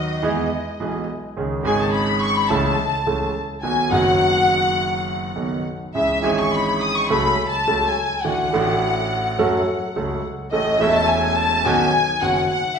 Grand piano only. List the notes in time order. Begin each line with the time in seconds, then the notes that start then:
Already playing: D#2 D#3 F#3 B3 F#4
0.22 E2 E3 G#3 B3 G#4
0.80 B1 B2 E3 G#3 B3 G#4
1.37 C#2 C#3 D#3 G#3 C#4 G#4
1.63 G#1 G#2 D#3 G#3 C#4 G#4
2.50 C#2 C#3 E3 A3 C#4 A4
3.07 C#2 C#3 E3 A3 C#4 A4
3.63 B1 B2 D#3 F#3 B3 F#4
3.90 F#1 F#2 D#3 F#3 B3 F#4
5.36 B1 B2 D#3 F#3 B3 F#4
5.95 C#2 C#3 E3 G#3 C#4 G#4
6.22 G#1 G#2 E3 G#3 C#4 G#4
7.10 C#2 C#3 F#3 A3 C#4 A4
7.67 C#2 C#3 F#3 A3 C#4 A4
8.24 D2 D3 E3 A3 D4 F#4
8.52 A1 A2 E3 A3 D4 F#4
9.39 F#2 F#3 A3 C#4 A4
9.96 C#2 C#3 F#3 A3 C#4 A4
10.52 A1 A2 E3 A3 C#4 A4
10.79 E1 E2 E3 A3 C#4 A4
11.65 B1 B2 D#3 B3 C#4 F#4
12.21 F#1 F#2 D#3 B3 C#4 F#4